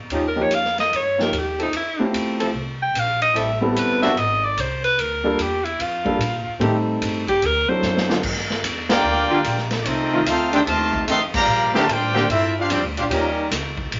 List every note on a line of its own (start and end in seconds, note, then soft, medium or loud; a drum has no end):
0.10 0.49 D#2 medium
0.10 0.29 F3 medium
0.10 0.29 C#4 medium
0.10 0.29 D#4 medium
0.10 0.29 G4 medium
0.10 ride medium
0.28 0.44 A#4 medium
0.36 0.49 F3 medium
0.36 0.49 A#3 medium
0.36 0.49 C#4 medium
0.36 0.49 D#4 medium
0.36 0.49 G4 medium
0.42 0.56 C#5 medium
0.50 0.90 F2 medium
0.50 hi-hat pedal medium
0.50 ride medium
0.54 0.79 F5 loud
0.65 snare soft
0.78 0.97 D#5 loud
0.78 snare soft
0.78 ride soft
0.92 1.31 G2 medium
0.92 1.20 C#5 medium
0.92 ride medium
1.18 1.31 F3 medium
1.18 1.31 A#3 medium
1.18 1.31 C#4 medium
1.18 1.31 D#4 medium
1.18 1.32 G4 medium
1.18 1.40 A#4 medium
1.18 snare soft
1.31 1.71 D#2 medium
1.31 hi-hat pedal medium
1.31 ride medium
1.38 1.61 G4 medium
1.59 1.68 F3 medium
1.59 1.68 C4 medium
1.59 1.74 D#4 medium
1.59 1.69 E4 medium
1.59 1.69 A4 medium
1.59 ride soft
1.72 2.11 F2 medium
1.72 ride medium
1.77 2.12 E4 medium
1.99 2.51 A3 medium
1.99 2.51 C4 medium
1.99 2.51 E4 medium
1.99 2.51 F4 medium
1.99 2.52 G4 medium
2.13 2.53 E2 medium
2.13 hi-hat pedal medium
2.13 ride medium
2.40 2.50 F3 medium
2.40 2.49 C4 medium
2.40 2.49 E4 medium
2.40 2.50 A4 loud
2.40 ride medium
2.53 2.93 C2 medium
2.82 3.01 G5 medium
2.94 3.34 A#1 medium
2.94 hi-hat pedal medium
2.94 ride medium
2.99 3.22 F5 medium
3.21 3.39 D#5 loud
3.21 ride medium
3.34 3.74 A1 medium
3.34 3.52 G3 medium
3.34 3.52 C4 medium
3.34 3.52 E4 medium
3.34 3.52 A4 loud
3.34 3.61 E5 medium
3.34 ride medium
3.61 4.13 G3 medium
3.61 4.13 B3 medium
3.61 4.13 C4 medium
3.61 4.14 E4 medium
3.61 3.78 G4 medium
3.61 4.14 A4 medium
3.75 4.15 G1 medium
3.75 4.02 B4 medium
3.75 hi-hat pedal medium
3.75 ride medium
4.02 4.12 F#3 loud
4.02 4.11 C4 loud
4.02 4.12 D4 loud
4.02 4.12 F#4 loud
4.02 4.20 E5 loud
4.02 snare medium
4.02 ride soft
4.16 4.56 G#1 medium
4.16 4.46 D#5 loud
4.16 ride medium
4.44 4.62 D5 medium
4.56 4.96 C2 medium
4.56 hi-hat pedal medium
4.56 ride medium
4.60 4.84 C5 medium
4.84 5.02 B4 loud
4.84 ride medium
4.98 5.37 D2 medium
4.98 5.43 A#4 medium
4.98 ride medium
5.24 5.37 G3 medium
5.24 5.37 A#3 medium
5.24 5.37 D4 medium
5.24 5.37 F4 medium
5.24 5.37 A4 medium
5.38 5.78 E2 medium
5.38 5.66 G4 medium
5.38 hi-hat pedal medium
5.38 ride medium
5.64 5.83 E4 medium
5.64 ride medium
5.79 6.17 F2 medium
5.79 6.61 F4 medium
5.79 ride medium
6.05 6.18 G3 medium
6.05 6.18 A#3 medium
6.05 6.18 D4 medium
6.05 6.18 F4 medium
6.05 6.19 A4 medium
6.05 kick medium
6.18 6.43 A#2 medium
6.18 hi-hat pedal medium
6.18 ride medium
6.46 muted upright bass stroke soft
6.59 6.99 A2 medium
6.59 6.77 D#3 medium
6.59 7.22 G3 medium
6.59 7.22 A3 medium
6.59 6.78 A3 medium
6.59 6.77 C4 medium
6.59 7.22 C4 medium
6.59 7.22 D#4 medium
6.59 6.78 G4 loud
6.59 7.22 A4 medium
6.59 ride medium
7.01 7.40 G2 medium
7.01 hi-hat pedal medium
7.01 ride medium
7.28 7.47 G4 loud
7.28 kick medium
7.28 ride soft
7.42 7.66 D2 loud
7.42 7.70 A#4 medium
7.42 ride medium
7.68 8.20 F#3 medium
7.68 8.20 C4 medium
7.68 8.20 D4 medium
7.68 8.21 E4 medium
7.68 8.21 A4 medium
7.68 8.16 C5 loud
7.82 8.21 F#2 loud
7.82 snare medium
7.82 hi-hat pedal medium
7.97 snare medium
8.08 8.18 D3 medium
8.08 8.18 G3 medium
8.08 8.18 A#3 medium
8.08 8.18 F4 loud
8.08 snare medium
8.23 8.62 G2 medium
8.23 kick medium
8.23 crash loud
8.37 snare soft
8.50 snare medium
8.63 9.02 E2 loud
8.63 hi-hat pedal medium
8.63 ride medium
8.89 9.67 A#3 loud
8.89 9.67 D4 medium
8.89 9.67 F4 medium
8.89 9.67 G4 medium
8.89 9.67 A#4 loud
8.89 9.67 D5 medium
8.89 9.67 G5 loud
8.89 snare loud
8.89 ride medium
9.03 9.28 D2 medium
9.29 9.40 D3 loud
9.29 9.40 G3 loud
9.29 9.39 A#3 medium
9.29 9.40 F4 loud
9.44 9.84 A#1 loud
9.44 hi-hat pedal medium
9.44 ride medium
9.58 snare soft
9.71 snare medium
9.71 ride medium
9.82 10.25 C2 medium
9.82 10.25 A3 loud
9.82 10.25 C4 loud
9.82 10.25 D#4 medium
9.82 10.26 F4 medium
9.82 9.86 D5 medium
9.82 ride medium
9.87 10.27 C4 medium
9.87 10.26 A4 medium
9.87 10.26 D#5 loud
10.13 10.22 D#3 loud
10.13 10.22 A3 medium
10.13 10.22 C4 medium
10.13 10.22 F4 loud
10.25 10.65 D2 medium
10.25 10.51 A3 medium
10.25 10.51 C4 medium
10.25 10.52 D#4 medium
10.25 10.50 F4 medium
10.25 10.51 A4 medium
10.25 10.52 C5 medium
10.25 10.52 F5 medium
10.25 hi-hat pedal medium
10.25 ride medium
10.52 10.62 D#3 loud
10.52 10.62 A3 medium
10.52 10.61 C4 medium
10.52 10.62 D4 loud
10.52 10.61 D#4 medium
10.52 10.59 G4 medium
10.52 10.60 A4 medium
10.52 10.61 C5 medium
10.52 10.60 G5 loud
10.52 ride medium
10.66 11.06 D#2 medium
10.66 11.05 C3 loud
10.66 11.04 D#3 medium
10.66 11.04 A3 medium
10.66 11.05 F4 loud
10.66 11.05 C5 medium
10.66 11.05 D#5 medium
10.66 11.05 A5 loud
10.66 ride medium
10.93 kick medium
11.07 11.46 F2 medium
11.07 11.20 D#3 loud
11.07 11.19 A3 loud
11.07 11.20 C4 medium
11.07 11.21 A4 medium
11.07 11.21 D#5 medium
11.07 11.21 F5 loud
11.07 11.21 C6 loud
11.07 hi-hat pedal medium
11.07 ride medium
11.34 11.72 F3 medium
11.34 11.72 G3 medium
11.34 11.72 A#3 loud
11.34 11.73 G4 loud
11.34 11.72 D5 loud
11.34 11.72 F5 loud
11.34 11.73 A#5 loud
11.34 kick loud
11.34 crash loud
11.47 11.72 A#2 medium
11.73 11.83 D3 loud
11.73 11.89 A3 medium
11.73 11.83 A#3 loud
11.73 11.83 C4 loud
11.73 11.90 F4 medium
11.73 11.83 G4 loud
11.73 11.90 D5 medium
11.73 muted upright bass stroke soft
11.73 snare medium
11.78 11.90 A#4 medium
11.78 11.90 A5 loud
11.88 12.27 A2 medium
11.88 12.30 G3 medium
11.88 12.29 D4 loud
11.88 12.29 G4 medium
11.88 12.31 D5 medium
11.88 12.31 G5 loud
11.88 hi-hat pedal medium
11.88 ride medium
11.92 12.31 F4 medium
11.92 12.31 C5 medium
12.13 12.23 D3 loud
12.13 12.24 A#3 loud
12.13 12.23 C4 loud
12.13 12.23 G4 loud
12.13 snare soft
12.29 12.68 G2 loud
12.29 12.55 C4 medium
12.29 12.54 E4 medium
12.29 12.55 F4 medium
12.29 12.55 A4 medium
12.29 12.55 E5 loud
12.29 ride medium
12.57 12.69 G3 medium
12.57 12.69 D4 medium
12.57 12.71 D4 medium
12.57 12.70 F4 medium
12.57 12.71 G4 medium
12.57 12.71 C5 medium
12.57 12.71 F5 loud
12.69 12.83 F2 loud
12.69 12.82 F3 medium
12.69 12.82 G3 medium
12.69 12.84 C4 medium
12.69 12.82 D4 medium
12.69 12.84 G4 medium
12.69 hi-hat pedal medium
12.69 ride medium
12.74 12.85 F4 medium
12.74 12.85 D5 medium
12.83 12.96 D2 medium
12.96 13.09 A#1 medium
12.96 13.03 G3 medium
12.96 13.03 D4 medium
12.96 13.04 D4 medium
12.96 13.03 F4 medium
12.96 13.05 G4 medium
12.96 13.04 C5 medium
12.96 13.04 F5 medium
12.96 ride medium
13.09 13.49 D#2 medium
13.09 13.28 F3 medium
13.09 13.49 A#3 medium
13.09 13.27 C#4 medium
13.09 13.49 C#4 medium
13.09 13.27 D#4 medium
13.09 13.49 D#4 medium
13.09 13.27 G4 medium
13.09 13.49 A#4 medium
13.09 ride medium
13.13 13.49 G3 medium
13.13 13.50 G4 medium
13.13 13.49 D#5 medium
13.50 13.90 C#2 medium
13.50 snare soft
13.50 hi-hat pedal medium
13.50 ride medium
13.77 kick medium
13.91 14.00 A#1 loud
13.91 ride medium